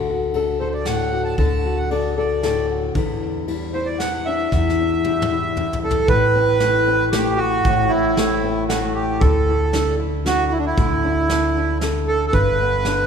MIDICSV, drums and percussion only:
0, 0, Header, 1, 2, 480
1, 0, Start_track
1, 0, Tempo, 521286
1, 1279, Time_signature, 3, 2, 24, 8
1, 12032, End_track
2, 0, Start_track
2, 0, Title_t, "Drums"
2, 310, Note_on_c, 9, 51, 40
2, 402, Note_off_c, 9, 51, 0
2, 787, Note_on_c, 9, 38, 60
2, 787, Note_on_c, 9, 51, 44
2, 879, Note_off_c, 9, 38, 0
2, 879, Note_off_c, 9, 51, 0
2, 1267, Note_on_c, 9, 51, 40
2, 1271, Note_on_c, 9, 36, 60
2, 1359, Note_off_c, 9, 51, 0
2, 1363, Note_off_c, 9, 36, 0
2, 1756, Note_on_c, 9, 51, 40
2, 1848, Note_off_c, 9, 51, 0
2, 2240, Note_on_c, 9, 38, 64
2, 2240, Note_on_c, 9, 51, 44
2, 2332, Note_off_c, 9, 38, 0
2, 2332, Note_off_c, 9, 51, 0
2, 2715, Note_on_c, 9, 51, 39
2, 2719, Note_on_c, 9, 36, 73
2, 2807, Note_off_c, 9, 51, 0
2, 2811, Note_off_c, 9, 36, 0
2, 3203, Note_on_c, 9, 51, 42
2, 3295, Note_off_c, 9, 51, 0
2, 3682, Note_on_c, 9, 38, 66
2, 3682, Note_on_c, 9, 51, 49
2, 3774, Note_off_c, 9, 38, 0
2, 3774, Note_off_c, 9, 51, 0
2, 4164, Note_on_c, 9, 36, 71
2, 4167, Note_on_c, 9, 38, 42
2, 4256, Note_off_c, 9, 36, 0
2, 4259, Note_off_c, 9, 38, 0
2, 4324, Note_on_c, 9, 38, 37
2, 4417, Note_off_c, 9, 38, 0
2, 4644, Note_on_c, 9, 48, 37
2, 4736, Note_off_c, 9, 48, 0
2, 4806, Note_on_c, 9, 47, 58
2, 4898, Note_off_c, 9, 47, 0
2, 5125, Note_on_c, 9, 45, 59
2, 5218, Note_off_c, 9, 45, 0
2, 5277, Note_on_c, 9, 43, 58
2, 5369, Note_off_c, 9, 43, 0
2, 5439, Note_on_c, 9, 43, 67
2, 5531, Note_off_c, 9, 43, 0
2, 5599, Note_on_c, 9, 42, 46
2, 5602, Note_on_c, 9, 36, 90
2, 5691, Note_off_c, 9, 42, 0
2, 5694, Note_off_c, 9, 36, 0
2, 6079, Note_on_c, 9, 38, 70
2, 6079, Note_on_c, 9, 42, 49
2, 6171, Note_off_c, 9, 38, 0
2, 6171, Note_off_c, 9, 42, 0
2, 6563, Note_on_c, 9, 38, 82
2, 6563, Note_on_c, 9, 42, 56
2, 6655, Note_off_c, 9, 38, 0
2, 6655, Note_off_c, 9, 42, 0
2, 7044, Note_on_c, 9, 36, 89
2, 7048, Note_on_c, 9, 42, 52
2, 7136, Note_off_c, 9, 36, 0
2, 7140, Note_off_c, 9, 42, 0
2, 7524, Note_on_c, 9, 38, 69
2, 7524, Note_on_c, 9, 42, 47
2, 7616, Note_off_c, 9, 38, 0
2, 7616, Note_off_c, 9, 42, 0
2, 8007, Note_on_c, 9, 38, 74
2, 8007, Note_on_c, 9, 42, 53
2, 8099, Note_off_c, 9, 38, 0
2, 8099, Note_off_c, 9, 42, 0
2, 8484, Note_on_c, 9, 36, 92
2, 8487, Note_on_c, 9, 42, 46
2, 8576, Note_off_c, 9, 36, 0
2, 8579, Note_off_c, 9, 42, 0
2, 8962, Note_on_c, 9, 38, 69
2, 8962, Note_on_c, 9, 42, 46
2, 9054, Note_off_c, 9, 38, 0
2, 9054, Note_off_c, 9, 42, 0
2, 9446, Note_on_c, 9, 38, 75
2, 9446, Note_on_c, 9, 42, 47
2, 9538, Note_off_c, 9, 38, 0
2, 9538, Note_off_c, 9, 42, 0
2, 9917, Note_on_c, 9, 42, 47
2, 9922, Note_on_c, 9, 36, 91
2, 10009, Note_off_c, 9, 42, 0
2, 10014, Note_off_c, 9, 36, 0
2, 10401, Note_on_c, 9, 38, 67
2, 10401, Note_on_c, 9, 42, 49
2, 10493, Note_off_c, 9, 38, 0
2, 10493, Note_off_c, 9, 42, 0
2, 10877, Note_on_c, 9, 38, 74
2, 10877, Note_on_c, 9, 42, 54
2, 10970, Note_off_c, 9, 38, 0
2, 10970, Note_off_c, 9, 42, 0
2, 11354, Note_on_c, 9, 42, 49
2, 11356, Note_on_c, 9, 36, 77
2, 11446, Note_off_c, 9, 42, 0
2, 11448, Note_off_c, 9, 36, 0
2, 11832, Note_on_c, 9, 38, 65
2, 11832, Note_on_c, 9, 42, 52
2, 11924, Note_off_c, 9, 38, 0
2, 11924, Note_off_c, 9, 42, 0
2, 12032, End_track
0, 0, End_of_file